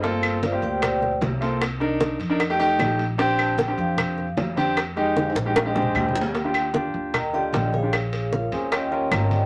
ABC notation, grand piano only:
X:1
M:4/4
L:1/16
Q:1/4=152
K:Bb
V:1 name="Grand piano"
[B,CFA]4 z [B,CFG]6 z3 [B,CFA]2 | z2 [DEB]4 z [DEB] z [A,EG] [A,EG]4 z2 | [CDG]4 z [CDG]6 z3 [CDG]2 | z2 [_A,EG]4 z [A,EG] z [A,CDG] [A,CDG]4 z2 |
[K:Eb] z [DFG]2 z [DFG]4 z2 [D,FG]4 z [DFG] | z6 [C_DA] z [DFG] z [DFB]4- [DFB] z |]